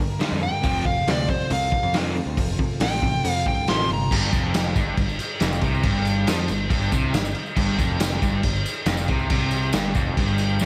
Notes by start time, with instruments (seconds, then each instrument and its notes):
0.00 overdriven electric guitar G2 D3, twelve-string acoustic guitar G3 A#3 D4 A#4
0.10 twelve-string acoustic guitar G3 A#3 D4 A#4
0.20 twelve-string acoustic guitar G2 D3 G3 A#3 D4 A#4, overdriven electric guitar G2 D3 G3, snare, open hi-hat
0.32 picked electric bass F2
0.40 overdriven electric guitar G2 D3, twelve-string acoustic guitar G3 A#3 D4 A#4, lead electric guitar G5
0.52 twelve-string acoustic guitar G3 A#3 D4 A#4
0.63 picked electric bass F1, overdriven electric guitar F2 C3 F3, twelve-string acoustic guitar F3 C4 F4 A4, kick, open hi-hat
0.75 twelve-string acoustic guitar C4 F4 A4
0.85 overdriven electric guitar F2 C3, lead electric guitar F5, kick
0.96 twelve-string acoustic guitar C4 F4 A4
1.08 picked electric bass D2, overdriven electric guitar F2 C3, twelve-string acoustic guitar F3 C4 F4 A4, lead electric guitar D5, snare, open hi-hat
1.29 overdriven electric guitar F2 C3, twelve-string acoustic guitar F3 C4 F4 A4, lead electric guitar C5, kick
1.39 twelve-string acoustic guitar C4 F4 A4
1.50 picked electric bass C2, overdriven electric guitar F2 C3, lead electric guitar F5, open hi-hat
1.60 twelve-string acoustic guitar C4 F4 A4
1.71 overdriven electric guitar F2 C3, twelve-string acoustic guitar F3 C4 F4 A4, kick
1.82 picked electric bass F2, twelve-string acoustic guitar C4 F4 A4
1.93 overdriven electric guitar F2 C3 F3, twelve-string acoustic guitar F3 C4 F4 A4, snare, open hi-hat
2.15 overdriven electric guitar F2 C3, twelve-string acoustic guitar F3 C4 F4 A4
2.26 picked electric bass D2
2.37 picked electric bass F1, overdriven electric guitar F2 C3, twelve-string acoustic guitar F3 C4 F4 A4, kick, open hi-hat
2.48 twelve-string acoustic guitar C4 F4 A4
2.59 overdriven electric guitar F2 C3, kick
2.69 twelve-string acoustic guitar C4 F4 A4
2.80 picked electric bass A1, overdriven electric guitar F2 C3, twelve-string acoustic guitar F3 C4 F4 A4, lead electric guitar G5, snare, open hi-hat
3.02 overdriven electric guitar F2 C3, twelve-string acoustic guitar F3 C4 F4 A4, kick
3.14 twelve-string acoustic guitar C4 F4 A4
3.25 picked electric bass F2, overdriven electric guitar F2 C3, open hi-hat
3.31 twelve-string acoustic guitar A4, lead electric guitar F5
3.36 twelve-string acoustic guitar C4 F4
3.45 picked electric bass C2, overdriven electric guitar F2 C3, twelve-string acoustic guitar F3 C4 F4 A4, lead electric guitar G5, kick
3.57 twelve-string acoustic guitar C4 F4 A4
3.67 picked electric bass A1, overdriven electric guitar F2 C3 F3, twelve-string acoustic guitar F3 C4 F4 A4, lead electric guitar C6, snare, open hi-hat
3.89 picked electric bass G1, overdriven electric guitar F2 C3, twelve-string acoustic guitar F3 C4 F4 A4
3.94 lead electric guitar A#5
3.99 twelve-string acoustic guitar C4 F4 A4
4.11 picked electric bass G1, overdriven electric guitar G2, kick, crash
4.33 picked electric bass F1, overdriven electric guitar F2, kick, tambourine, crash
4.54 snare, tambourine, crash
4.76 picked electric bass G1, overdriven electric guitar G2, kick, tambourine, crash
4.97 picked electric bass G1, overdriven electric guitar G2, kick, tambourine, crash
5.09 tambourine
5.19 tambourine, crash
5.40 picked electric bass F1, overdriven electric guitar F2, snare, tambourine, crash
5.53 tambourine
5.61 picked electric bass C2, overdriven electric guitar C3, kick, tambourine, crash
5.75 tambourine
5.83 picked electric bass G1, overdriven electric guitar G2, kick, crash
6.05 tambourine, crash
6.27 picked electric bass F2, overdriven electric guitar F3, snare, tambourine, crash
6.48 picked electric bass G1, overdriven electric guitar G2, tambourine, crash
6.70 picked electric bass G1, overdriven electric guitar G2, kick, tambourine, crash
6.82 tambourine
6.92 picked electric bass C2, overdriven electric guitar C3, kick, tambourine, crash
7.13 picked electric bass G1, overdriven electric guitar G2, snare, tambourine, crash
7.25 tambourine
7.35 crash
7.46 tambourine
7.57 picked electric bass G1, overdriven electric guitar G2, kick, crash
7.78 picked electric bass F1, overdriven electric guitar F2, kick, tambourine, crash
8.00 snare, tambourine, crash
8.22 picked electric bass G1, overdriven electric guitar G2, kick, tambourine, crash
8.43 picked electric bass G1, overdriven electric guitar G2, kick, tambourine, crash
8.56 tambourine
8.66 tambourine, crash
8.86 picked electric bass F1, overdriven electric guitar F2, snare, tambourine, crash
8.97 tambourine
9.08 picked electric bass C2, overdriven electric guitar C3, kick, tambourine, crash
9.19 tambourine
9.30 picked electric bass C2, overdriven electric guitar C3, kick, tambourine, crash
9.40 tambourine
9.51 tambourine, crash
9.63 tambourine
9.73 picked electric bass G1, overdriven electric guitar G2, snare, tambourine, crash
9.95 picked electric bass F1, overdriven electric guitar F2, kick, tambourine, crash
10.17 picked electric bass G1, overdriven electric guitar G2, kick, crash
10.28 tambourine
10.38 tambourine, crash
10.49 tambourine
10.59 picked electric bass F1, overdriven electric guitar F2, snare, tambourine